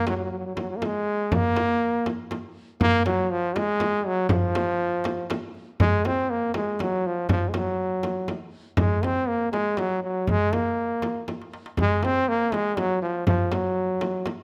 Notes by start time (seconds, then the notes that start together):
0.07 F#3, darbuka tek, frame drum
0.17 F#3
0.24 F#3
0.31 F#3
0.38 F#3
0.46 F#3
0.55 F#3, darbuka tek, frame drum
0.62 F#3
0.70 F#3
0.76 A#3
0.82 G#3, darbuka tek, frame drum
1.32 A#3, frame drum, darbuka dum
1.56 darbuka tek, frame drum
2.06 darbuka tek, frame drum
2.31 darbuka tek, frame drum
2.81 A#3, frame drum, darbuka dum
3.06 F#3, darbuka tek, frame drum
3.31 F3
3.56 G#3, darbuka tek, frame drum
3.80 darbuka tek, frame drum
4.06 F#3
4.29 F3, frame drum, darbuka dum
4.55 darbuka tek, frame drum
4.80 darbuka ka
5.04 darbuka tek, frame drum
5.30 darbuka tek, frame drum
5.55 darbuka ka
5.80 G#3, darbuka dum, frame drum
6.05 C4, darbuka tek, frame drum
6.30 A#3
6.54 G#3, darbuka tek, frame drum
6.79 F#3, darbuka tek, frame drum
7.06 F3
7.29 F3, darbuka dum, frame drum
7.49 G#3
7.54 F#3, darbuka tek, frame drum
8.03 darbuka tek, frame drum
8.28 darbuka tek, frame drum
8.77 G#3, frame drum, darbuka dum
9.03 C4, darbuka tek, frame drum
9.28 A#3
9.52 G#3, darbuka tek, frame drum
9.77 F#3, darbuka tek, frame drum
10.03 F#3
10.27 G#3, frame drum, darbuka dum
10.53 A#3, darbuka tek, frame drum
11.02 darbuka tek, frame drum
11.28 darbuka tek, frame drum
11.42 darbuka ka
11.54 darbuka tek
11.66 darbuka ka
11.77 G#3, frame drum, darbuka dum
12.03 C4, darbuka tek, frame drum
12.28 A#3
12.52 G#3, darbuka tek, frame drum
12.77 F#3, darbuka tek, frame drum
13.02 F3
13.27 F3, frame drum, darbuka dum
13.51 F#3, darbuka tek, frame drum
14.01 darbuka tek, frame drum
14.26 darbuka tek, frame drum